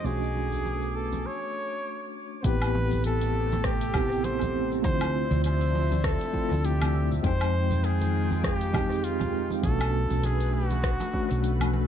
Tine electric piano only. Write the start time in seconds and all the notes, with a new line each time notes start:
0.03 A3 C#4 D4 F#4
2.43 B3 C4 E4 G4
3.94 B3 C4 E4 G4
4.82 A3 C4 E4 F4
6.33 A3 C4 E4 F4
7.22 G#3 C4 D#4 G5
8.73 G#3 C4 D#4 G4
9.62 A3 C#4 D4 F#4
11.13 A3 C#4 D4 F#4